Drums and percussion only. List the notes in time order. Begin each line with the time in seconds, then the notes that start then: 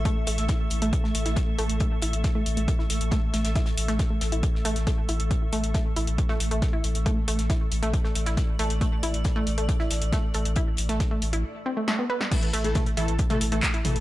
0.05 kick, closed hi-hat
0.27 closed hi-hat, open hi-hat
0.38 snare, closed hi-hat
0.48 kick, snare, closed hi-hat
0.70 closed hi-hat, open hi-hat
0.82 closed hi-hat
0.93 kick, closed hi-hat
1.04 snare
1.15 closed hi-hat, open hi-hat
1.26 snare, closed hi-hat
1.36 kick, snare, closed hi-hat
1.58 closed hi-hat, open hi-hat
1.69 closed hi-hat
1.80 kick, closed hi-hat
2.02 closed hi-hat, open hi-hat
2.13 closed hi-hat
2.24 kick, snare, closed hi-hat
2.46 closed hi-hat, open hi-hat
2.57 closed hi-hat
2.68 kick, closed hi-hat
2.79 snare
2.90 snare, closed hi-hat, open hi-hat
3.01 closed hi-hat
3.11 kick, snare, closed hi-hat
3.34 snare, closed hi-hat, open hi-hat
3.44 snare, closed hi-hat
3.55 kick, snare, closed hi-hat
3.66 snare, closed hi-hat
3.77 closed hi-hat, open hi-hat
3.88 snare, closed hi-hat
3.99 kick, snare, closed hi-hat
4.21 snare, closed hi-hat, open hi-hat
4.32 closed hi-hat
4.43 kick, closed hi-hat
4.55 snare
4.65 closed hi-hat, open hi-hat
4.76 snare, closed hi-hat
4.87 kick, snare, closed hi-hat
5.08 closed hi-hat, open hi-hat
5.20 closed hi-hat
5.31 kick, closed hi-hat
5.52 closed hi-hat, open hi-hat
5.64 closed hi-hat
5.74 kick, snare, closed hi-hat
5.96 closed hi-hat, open hi-hat
6.07 closed hi-hat
6.18 kick, closed hi-hat
6.29 snare
6.40 snare, closed hi-hat, open hi-hat
6.51 closed hi-hat
6.62 kick, snare, closed hi-hat
6.84 closed hi-hat, open hi-hat
6.95 closed hi-hat
7.06 kick, closed hi-hat
7.28 closed hi-hat, open hi-hat
7.39 snare, closed hi-hat
7.50 kick, snare, closed hi-hat
7.71 closed hi-hat, open hi-hat
7.83 closed hi-hat
7.93 kick, closed hi-hat
8.04 snare
8.15 closed hi-hat, open hi-hat
8.26 snare, closed hi-hat
8.37 kick, snare, closed hi-hat
8.59 closed hi-hat, open hi-hat
8.70 closed hi-hat
8.81 kick, closed hi-hat
9.03 closed hi-hat, open hi-hat
9.14 closed hi-hat
9.24 kick, snare, closed hi-hat
9.47 closed hi-hat, open hi-hat
9.58 closed hi-hat
9.69 kick, closed hi-hat
9.79 snare
9.90 snare, closed hi-hat, open hi-hat
10.02 closed hi-hat
10.12 kick, snare, closed hi-hat
10.34 closed hi-hat, open hi-hat
10.45 closed hi-hat
10.56 kick, closed hi-hat
10.77 closed hi-hat, open hi-hat
10.89 snare, closed hi-hat
11.00 kick, snare, closed hi-hat
11.22 closed hi-hat, open hi-hat
11.33 closed hi-hat
11.88 snare
12.21 snare
12.31 kick, closed hi-hat, crash
12.43 closed hi-hat
12.53 closed hi-hat, open hi-hat
12.64 closed hi-hat
12.75 kick, snare, closed hi-hat, mid tom
12.86 closed hi-hat
12.97 closed hi-hat, open hi-hat
13.08 closed hi-hat
13.19 kick, closed hi-hat
13.30 snare, closed hi-hat, mid tom
13.41 snare, closed hi-hat, open hi-hat
13.52 closed hi-hat
13.63 kick, snare, clap, closed hi-hat
13.74 closed hi-hat
13.85 closed hi-hat, open hi-hat, mid tom
13.96 closed hi-hat